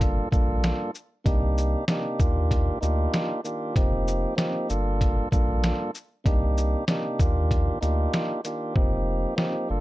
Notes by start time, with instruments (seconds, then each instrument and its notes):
Already playing: sub bass G1, tonewheel organ G2 A#3 D4 F4 A4
0.01 kick, closed hi-hat
0.31 sub bass A#1, tonewheel organ G2 A#3 D4 F4 A4, kick, shaker
0.64 snare, closed hi-hat
0.95 shaker
1.24 sub bass C2, tonewheel organ C3 A#3 D4 D#4 G4, kick, closed hi-hat
1.58 shaker
1.88 tonewheel organ C3 A#3 D4 D#4 G4, snare, closed hi-hat
2.19 sub bass D#2, tonewheel organ D#3 A#3 D4 F4 G4, kick, shaker
2.51 kick, closed hi-hat
2.81 sub bass D2, tonewheel organ A#3 D4 D#4 F4 G4, shaker
3.14 snare, closed hi-hat
3.44 tonewheel organ D#3 A#3 D4 F4 G4, shaker
3.74 sub bass F1, tonewheel organ F3 A#3 C4 D#4 G4, kick, closed hi-hat
4.08 shaker
4.36 tonewheel organ F3 A#3 C4 D#4 G4, snare, closed hi-hat
4.68 sub bass G1, tonewheel organ G2 A#3 D4 F4 A4, shaker
5.01 kick, closed hi-hat
5.31 sub bass A#1, tonewheel organ G2 A#3 D4 F4 A4, kick, shaker
5.64 snare, closed hi-hat
5.95 shaker
6.24 sub bass C2, tonewheel organ C3 A#3 D4 D#4 G4, kick, closed hi-hat
6.58 shaker
6.88 tonewheel organ C3 A#3 D4 D#4 G4, snare, closed hi-hat
7.19 sub bass D#2, tonewheel organ D#3 A#3 D4 F4 G4, kick, shaker
7.51 kick, closed hi-hat
7.81 sub bass D2, tonewheel organ A#3 D4 D#4 F4 G4, closed hi-hat, shaker
8.13 snare, closed hi-hat
8.44 tonewheel organ D#3 A#3 D4 F4 G4, closed hi-hat, shaker
8.74 sub bass F1, tonewheel organ F3 A#3 C4 D#4 G4, kick
9.35 tonewheel organ F3 A#3 C4 D#4 G4, snare
9.69 sub bass G1, tonewheel organ G2 A#3 D4 F4 A4